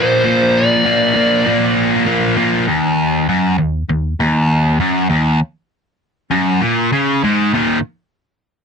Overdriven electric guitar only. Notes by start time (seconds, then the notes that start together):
Already playing: A#2 F3 A#3
0.25 A#2 F3 A#3
0.85 A#2 F3 A#3
1.15 A#2 F3 A#3
1.46 A#2 F3 A#3
2.05 A#2 F3 A#3
2.36 A#2 F3 A#3
2.67 D#2
3.29 F#2
3.58 D#2
3.89 D#2
4.20 D#2
4.80 F#2
5.10 D#2
6.31 F#2
6.61 A#2
6.92 C#3
7.24 G#2
7.53 D#2 A#2 D#3